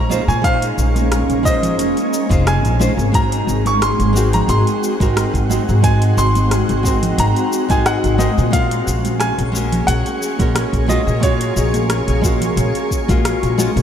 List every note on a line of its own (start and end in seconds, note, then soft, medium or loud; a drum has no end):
0.00 0.17 A#1 medium
0.00 8.49 G#3 medium
0.00 3.10 A#3 medium
0.00 3.10 C#4 loud
0.00 0.31 A#5 loud
0.10 0.21 G#3 medium
0.10 0.22 C#4 medium
0.10 0.22 D#4 medium
0.10 0.22 F4 medium
0.10 0.23 C5 medium
0.10 high conga medium
0.10 cabasa medium
0.28 0.70 A#2 loud
0.28 0.45 G#5 loud
0.28 cabasa soft
0.42 1.40 G#3 medium
0.42 1.41 C#4 medium
0.42 1.42 D#4 medium
0.42 1.42 F4 medium
0.42 1.41 F5 loud
0.42 kick loud
0.42 closed hi-hat medium
0.42 cabasa soft
0.47 1.43 C5 medium
0.62 closed hi-hat soft
0.62 cabasa soft
0.78 1.21 A#1 loud
0.78 cabasa medium
0.96 closed hi-hat soft
0.96 high conga medium
0.96 cabasa soft
1.12 cross-stick loud
1.12 closed hi-hat medium
1.12 cabasa soft
1.30 1.79 A#1 medium
1.30 closed hi-hat soft
1.30 cabasa soft
1.43 2.26 G#3 medium
1.43 2.27 C#4 medium
1.43 2.27 D#4 medium
1.43 2.28 F4 medium
1.43 2.50 D#5 loud
1.43 kick loud
1.43 cabasa medium
1.47 2.28 C5 medium
1.63 closed hi-hat soft
1.63 low conga medium
1.63 cabasa soft
1.79 1.91 F1 medium
1.79 closed hi-hat medium
1.79 high conga medium
1.79 cabasa soft
1.97 closed hi-hat soft
1.97 cabasa soft
2.14 cabasa medium
2.29 2.64 F1 loud
2.29 2.76 G#3 medium
2.29 2.76 C#4 medium
2.29 2.76 D#4 medium
2.29 2.77 F4 medium
2.29 2.77 C5 loud
2.29 kick loud
2.29 closed hi-hat soft
2.29 cabasa soft
2.47 3.16 G#5 loud
2.47 cross-stick loud
2.47 closed hi-hat medium
2.47 cabasa soft
2.64 2.87 A#1 medium
2.64 closed hi-hat soft
2.64 cabasa soft
2.79 2.91 G#3 medium
2.79 2.91 C#4 medium
2.79 2.92 D#4 medium
2.79 2.92 F4 medium
2.79 2.92 C5 loud
2.79 high conga medium
2.79 cabasa medium
2.97 3.40 G#1 medium
2.97 cabasa soft
3.12 4.10 G#3 medium
3.12 4.11 C4 medium
3.12 8.50 C4 medium
3.12 4.11 D#4 medium
3.12 8.50 F#4 medium
3.12 4.12 F#4 medium
3.12 3.68 A#5 loud
3.12 kick loud
3.12 closed hi-hat medium
3.12 cabasa soft
3.16 4.13 A#4 medium
3.32 closed hi-hat soft
3.32 cabasa soft
3.47 3.90 G#1 medium
3.47 cabasa medium
3.65 3.83 C#6 loud
3.65 closed hi-hat soft
3.65 high conga medium
3.65 cabasa soft
3.82 4.35 C6 loud
3.82 cross-stick medium
3.82 closed hi-hat medium
3.82 cabasa soft
3.99 4.41 G#1 medium
3.99 closed hi-hat soft
3.99 cabasa soft
4.13 4.96 G#3 medium
4.13 4.96 C4 medium
4.13 4.97 D#4 medium
4.13 4.98 F#4 medium
4.13 cabasa medium
4.18 4.98 A#4 medium
4.33 4.50 A#5 medium
4.33 closed hi-hat soft
4.33 low conga medium
4.33 cabasa soft
4.48 4.61 G#1 loud
4.48 5.80 C6 loud
4.48 closed hi-hat medium
4.48 high conga medium
4.48 cabasa soft
4.67 closed hi-hat soft
4.67 cabasa soft
4.84 cabasa medium
5.00 5.23 G#1 medium
5.00 5.46 G#3 medium
5.00 5.46 C4 medium
5.00 5.47 D#4 medium
5.00 5.47 F#4 medium
5.00 5.47 A#4 loud
5.00 kick loud
5.00 closed hi-hat soft
5.00 cabasa soft
5.17 cross-stick loud
5.17 closed hi-hat medium
5.17 cabasa soft
5.34 5.57 G#1 medium
5.34 kick medium
5.34 closed hi-hat soft
5.34 cabasa soft
5.49 5.61 G#3 medium
5.49 5.61 C4 medium
5.49 5.62 D#4 medium
5.49 5.62 F#4 medium
5.49 5.62 A#4 medium
5.49 high conga medium
5.49 cabasa medium
5.69 6.10 G#2 loud
5.69 cabasa soft
5.82 6.80 G#3 medium
5.82 6.81 C4 medium
5.82 6.82 D#4 medium
5.82 6.82 F#4 medium
5.82 6.19 G#5 loud
5.82 kick loud
5.82 closed hi-hat medium
5.82 cabasa soft
5.87 6.83 A#4 medium
6.02 closed hi-hat soft
6.02 cabasa soft
6.17 6.60 G#1 loud
6.17 7.22 C6 loud
6.17 cabasa medium
6.35 closed hi-hat soft
6.35 high conga medium
6.35 cabasa soft
6.51 cross-stick medium
6.51 closed hi-hat medium
6.51 cabasa soft
6.69 7.11 G#1 medium
6.69 closed hi-hat soft
6.69 cabasa soft
6.83 7.66 G#3 medium
6.83 7.66 C4 medium
6.83 7.67 D#4 medium
6.83 7.67 F#4 medium
6.83 kick medium
6.83 cabasa medium
6.88 7.68 A#4 medium
7.03 closed hi-hat soft
7.03 low conga medium
7.03 cabasa soft
7.18 7.31 G#1 loud
7.18 7.72 A#5 loud
7.18 closed hi-hat medium
7.18 high conga medium
7.18 cabasa soft
7.36 closed hi-hat soft
7.36 cabasa soft
7.53 cabasa medium
7.69 7.93 G#1 medium
7.69 8.15 G#3 loud
7.69 8.16 C4 medium
7.69 8.16 D#4 medium
7.69 8.16 F#4 medium
7.69 8.17 A#4 loud
7.69 7.85 G#5 medium
7.69 kick loud
7.69 closed hi-hat soft
7.69 cabasa soft
7.86 8.21 F#5 medium
7.86 cross-stick loud
7.86 closed hi-hat medium
7.86 cabasa soft
8.04 8.27 G#1 medium
8.04 closed hi-hat soft
8.04 cabasa soft
8.18 8.30 G#3 medium
8.18 8.31 C4 medium
8.18 8.31 D#4 medium
8.18 8.31 F#4 medium
8.18 8.31 A#4 loud
8.18 8.51 D#5 medium
8.18 high conga loud
8.18 cabasa medium
8.38 8.80 A#2 loud
8.38 cabasa soft
8.51 9.49 G#3 medium
8.51 9.50 C#4 medium
8.51 9.50 F4 medium
8.51 9.51 F#4 medium
8.51 13.82 C#5 medium
8.51 9.17 F5 loud
8.51 kick loud
8.51 closed hi-hat medium
8.51 cabasa soft
8.55 13.82 A#3 medium
8.55 13.82 G#4 loud
8.55 9.52 A#4 medium
8.71 closed hi-hat soft
8.71 cabasa soft
8.87 9.30 A#1 medium
8.87 cabasa medium
9.05 closed hi-hat soft
9.05 high conga medium
9.05 cabasa soft
9.20 9.90 G#5 loud
9.20 cross-stick loud
9.20 closed hi-hat medium
9.20 cabasa soft
9.38 9.80 A#1 medium
9.38 closed hi-hat soft
9.38 cabasa soft
9.52 10.35 G#3 medium
9.52 10.36 C#4 medium
9.52 10.37 F#4 medium
9.52 cabasa medium
9.57 10.37 A#4 medium
9.72 closed hi-hat soft
9.72 low conga medium
9.72 cabasa soft
9.87 10.01 A#1 loud
9.87 10.92 F#5 loud
9.87 closed hi-hat medium
9.87 high conga medium
9.87 cabasa soft
10.06 closed hi-hat soft
10.06 cabasa soft
10.22 cabasa medium
10.39 10.62 A#1 medium
10.39 10.85 G#3 medium
10.39 10.85 C#4 medium
10.39 10.86 F#4 medium
10.39 10.86 A#4 loud
10.39 kick medium
10.39 closed hi-hat soft
10.39 cabasa soft
10.56 cross-stick loud
10.56 closed hi-hat medium
10.56 cabasa soft
10.73 10.96 A#1 medium
10.73 kick medium
10.73 closed hi-hat soft
10.73 cabasa soft
10.88 11.00 G#3 medium
10.88 11.00 C#4 medium
10.88 11.00 F4 medium
10.88 11.01 F#4 medium
10.88 11.01 A#4 loud
10.88 11.24 D#5 medium
10.88 high conga medium
10.88 cabasa medium
11.07 11.49 A#2 loud
11.07 cabasa soft
11.20 12.19 G#3 medium
11.20 12.20 C#4 medium
11.20 12.20 F4 medium
11.20 12.21 F#4 medium
11.20 12.54 C#5 medium
11.20 kick loud
11.20 closed hi-hat medium
11.20 cabasa soft
11.24 12.21 A#4 medium
11.41 closed hi-hat soft
11.41 cabasa soft
11.56 12.00 A#1 medium
11.56 cabasa medium
11.74 closed hi-hat soft
11.74 high conga medium
11.74 cabasa soft
11.90 cross-stick loud
11.90 closed hi-hat medium
11.90 cabasa soft
12.08 12.50 A#1 medium
12.08 closed hi-hat soft
12.08 cabasa soft
12.21 13.04 G#3 medium
12.21 13.05 C#4 medium
12.21 13.06 F4 medium
12.21 13.06 F#4 medium
12.21 kick loud
12.21 cabasa medium
12.26 13.07 A#4 medium
12.41 closed hi-hat soft
12.41 low conga medium
12.41 cabasa soft
12.56 12.70 A#1 loud
12.56 closed hi-hat medium
12.56 high conga medium
12.56 cabasa soft
12.75 closed hi-hat soft
12.75 cabasa soft
12.91 kick medium
12.91 cabasa medium
13.08 13.32 A#1 medium
13.08 13.55 G#3 loud
13.08 13.55 C#4 medium
13.08 13.55 F4 medium
13.08 13.56 F#4 medium
13.08 13.56 A#4 loud
13.08 kick loud
13.08 closed hi-hat soft
13.08 cabasa soft
13.25 cross-stick loud
13.25 closed hi-hat medium
13.25 cabasa soft
13.43 13.66 A#1 medium
13.43 closed hi-hat soft
13.43 cabasa soft
13.58 13.70 G#3 medium
13.58 13.70 C#4 medium
13.58 13.70 F4 medium
13.58 13.70 F#4 medium
13.58 13.71 A#4 loud
13.58 high conga medium
13.58 cabasa medium
13.76 13.82 A#2 loud
13.76 closed hi-hat soft
13.76 cabasa soft